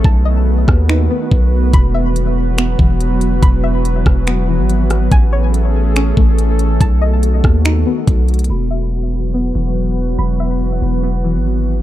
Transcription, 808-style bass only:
X:1
M:4/4
L:1/16
Q:1/4=142
K:E
V:1 name="808-style bass" clef=bass
B,,,6 D,,4 z2 B,,,4 | E,,,8- E,,,2 E,,,6 | E,,,6 E,,,4- E,,, G,,,4- G,,, | A,,,8- A,,,2 A,,,6 |
B,,,6 D,,4 z2 B,,,4 | E,,,8- E,,,2 E,,,6 | E,,,6 E,,,4- E,,, G,,,4- G,,, |]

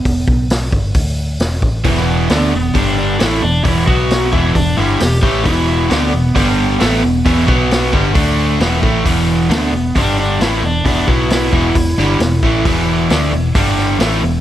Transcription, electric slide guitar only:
X:1
M:4/4
L:1/8
Q:1/4=133
K:Em
V:1 name="Electric slide guitar"
B,2 z6 | z2 B, B, D D E D | E F2 E D E G G | E2 B,6- |
B,2 z6 | z2 B,2 D D E D | D E E6- | E8 |]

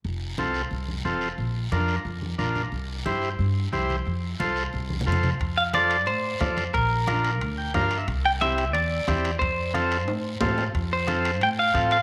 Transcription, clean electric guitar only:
X:1
M:4/4
L:1/8
Q:1/4=180
K:F
V:1 name="Clean electric guitar"
z8 | z8 | z8 | z8 |
z f d2 c4 | B6- B z | z g e2 d4 | c6- c z |
z c3 g f2 f |]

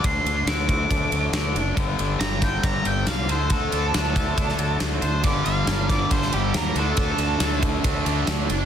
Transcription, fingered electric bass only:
X:1
M:4/4
L:1/8
Q:1/4=138
K:Dphr
V:1 name="Fingered electric bass" clef=bass
D,, D,, D,,2 D,, D,, D,, ^F,,, | G,,, G,,, z2 G,,, G,,, C,, D,, | D,, D,, D,,2 D,, D,, D,, D,, | G,,, G,,, G,,,2 G,,, G,,, E,, D,, |
D,, D,, D,,2 D,, D,, D,, ^F,,, |]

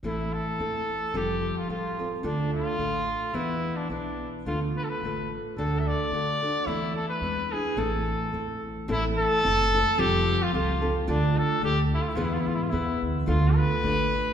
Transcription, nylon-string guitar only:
X:1
M:2/4
L:1/8
Q:"Swing" 1/4=109
K:Am
V:1 name="Nylon-string guitar"
[A,,E,A,CEA]2 [A,CEA]2 | [F,G,CFA]2 [G,CFA] [CFA] | [D,A,DFA]2 [A,DFA]2 | [E,B,E^GB]2 [B,EGB]2 |
[D,A,DFA]2 [A,DFA]2 | [D,A,D^FA]2 [A,DFA] [DFA] | [E,A,CEA]2 [^G,DEB] [DEB] | [A,,E,A,CEA]2 [A,CEA]2 |
[A,,E,A,CEA]2 [A,CE] [A,CEA] | [F,G,CFA]2 [G,CFA] [CFA] | [D,A,DFA]2 [A,DFA]2 | [E,B,E^GB]2 [B,EGB]2 |
[D,A,DFA]2 [A,DFA]2 |]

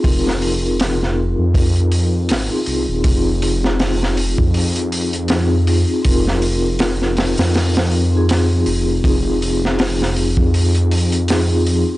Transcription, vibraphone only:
X:1
M:4/4
L:1/16
Q:"Swing 16ths" 1/4=80
K:Fm
V:1 name="Vibraphone"
[CEFB]8- [CEFB]3 z2 [CEFA]3 | [CEFA]12 [CEFA]4 | [CEFB]8- [CEFB]3 [CEFA]4- [CEFA] | [CEFA]12 [CEFA]4 |]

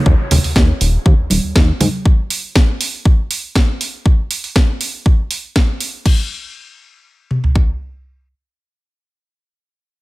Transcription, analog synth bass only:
X:1
M:4/4
L:1/16
Q:1/4=120
K:Ebm
V:1 name="Analog synth bass" clef=bass
E,, z E,,, E,, E,, z E,,, z E,, E,,, E,,, E,, E,, z A,, z | z16 | z16 | z16 |
z16 |]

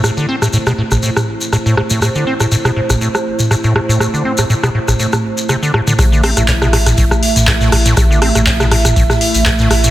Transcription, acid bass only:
X:1
M:4/4
L:1/16
Q:"Swing 16ths" 1/4=121
K:Am
V:1 name="Acid bass" clef=bass
A,, D, C A,, A,, B,, A,, A,,, A,, z3 A,, A,, A,, A,, | A,, D, C A,, A,, B,, A,, A,,, A,, z3 A,, A,, z A,, | z D, C A,, A,, B,, A,, A,,, A,, z3 C, D, A,, D, | A,, D, C A,, A,, B,, A,, A,,, A,, z3 A,, A,, A,, A,, |
A,, D, C A,, A,, B,, A,, A,,, A,, z3 A,, A,, z A,, |]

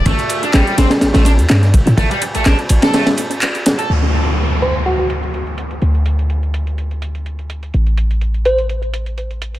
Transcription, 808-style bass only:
X:1
M:4/4
L:1/16
Q:"Swing 16ths" 1/4=125
K:Ador
V:1 name="808-style bass" clef=bass
A,,, z3 A,,, z A,,, z A,,, A,,,2 E,, G,,2 G,,, A,, | A,,, z2 A,,, A,,, z A,,, z8 z | D,,16 | D,,16 |
A,,,16 |]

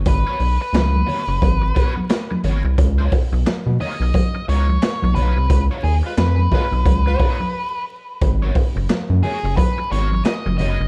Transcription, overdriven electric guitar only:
X:1
M:4/4
L:1/16
Q:"Swing 16ths" 1/4=88
K:G#dor
V:1 name="Overdriven electric guitar"
z [B,FAc] z4 [B,FAc] z3 [B,FAc] z3 [B,FAc] z | z [B,DEc] z4 [B,DEc] z3 [B,DEc] z3 [B,DEc] z | z [B,DEc] z4 [B,DEc] z3 [B,DEc] z4 z | z [B,FAc] z4 [B,FAc] z3 [B,FAc] z3 [B,FAc] z |]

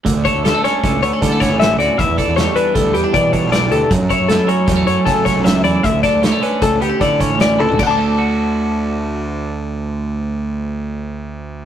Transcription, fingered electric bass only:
X:1
M:5/4
L:1/16
Q:1/4=155
K:D
V:1 name="Fingered electric bass" clef=bass
D,, D,, z D,,2 z3 C,,2 D,, z D,3 A,,,3 D,, z | E,, E,, z E,,2 z3 D,,2 E,, z E,3 B,,,3 D,, z | F,, F,, z F,,2 z3 E,,2 F,, z F,3 C,,3 E,, z | D,, D,, z D,,2 z3 C,,2 D,, z D,3 A,,,3 C,, z |
D,,16- D,,4- | D,,16- D,,4 |]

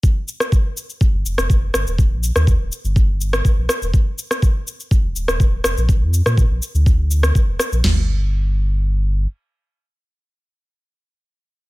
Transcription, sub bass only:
X:1
M:4/4
L:1/16
Q:1/4=123
K:Eblyd
V:1 name="Sub bass" clef=bass
z8 z G,,, F,,, F,,, F,,,2 G,,, E,,,- | E,,, B,,,2 E,,2 E,,, z G,,,4- G,,, z B,,, z E,,, | z8 z F,,, E,,, E,,, E,,,2 F,,, B,,,- | B,,, F,,2 B,,2 B,,, z D,,4- D,, z F,,, z B,,, |
G,,,12 z4 | z16 |]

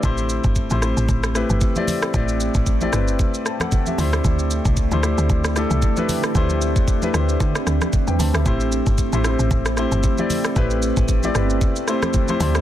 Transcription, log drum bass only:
X:1
M:4/4
L:1/16
Q:"Swing 16ths" 1/4=114
K:Am
V:1 name="Log drum bass" clef=bass
A,,,3 G,,,2 A,,,2 A,,, A,,,3 G,,, z4 | A,,,3 A,,,3 G,,,2 z6 D,,2 | D,,3 C,,2 D,,2 D,, D,,3 C,, z4 | D,,3 E,,3 D,,2 D, z D,, z2 E,, D,, D,, |
A,,,3 G,,,2 A,,,2 A,,, A,,,3 G,,, z4 | A,,,3 A,,,3 G,,,2 z6 D,,2 |]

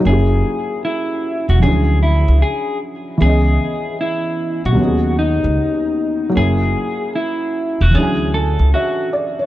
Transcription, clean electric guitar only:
X:1
M:4/4
L:1/16
Q:"Swing 16ths" 1/4=76
K:F#mix
V:1 name="Clean electric guitar"
G4 E3 F G2 E2 G2 z2 | G4 E3 F3 D6 | G4 E3 F G2 =A2 F2 z2 |]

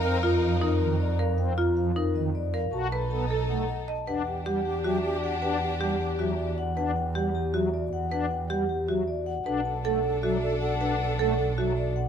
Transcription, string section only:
X:1
M:7/8
L:1/8
Q:1/4=156
K:Fmix
V:1 name="String section"
[EB]6 z | z6 z | [^DA]6 z | [K:Em] [DG]6- [DG]- |
[DG]6 z | z6 z | z6 z | [DA]6- [DA]- |
[DA]6 z |]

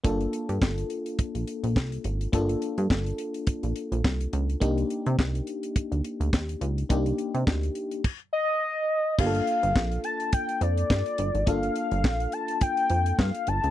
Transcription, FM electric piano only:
X:1
M:4/4
L:1/8
Q:"Swing 16ths" 1/4=105
K:Gm
V:1 name="FM electric piano"
[B,DFA]8 | [B,DFA]8 | [B,DEG]8 | [B,DEG]4 z4 |
[B,DFGA]8 | [B,DFA]8 |]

